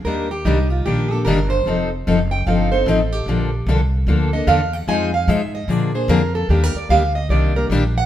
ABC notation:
X:1
M:4/4
L:1/8
Q:"Swing" 1/4=149
K:Bb
V:1 name="Steel-string acoustic guitar"
B G E F G A B c- | c z2 g f c A G- | G2 z3 e f _g | _a f =e _e d c B =A |
[K:Eb] (3G B d f e d B z _g |]
V:2 name="Steel-string acoustic guitar"
[E,G,B,DG] z [E,G,B,DG] z [E,G,B,DG] [B,DG] [E,G,B,DG] z | [F,CEA] z [F,CEA] z [F,CEA] [CEA] [F,CEA] z | [D,F,B,DA] z [D,F,B,DA] z [D,F,B,DA] [B,DA] [D,F,B,DA] z | [F,_A,EFc] z [F,A,EFc] z [D,F,B,D_A] [B,DA] [D,F,B,DA] z |
[K:Eb] [E,G,B,DG] z [E,G,B,DG] z [E,G,B,DG] [B,DG] [E,G,B,DG] z |]
V:3 name="Upright bass" clef=bass
E,,2 C,,2 B,,,2 G,,,2 | F,,,2 _G,,,2 =G,,,2 A,,,2 | B,,,2 C,,2 D,,2 =E,,2 | F,,2 _A,,2 B,,2 F,,2 |
[K:Eb] E,, z D,,2 C,,2 B,,,2 |]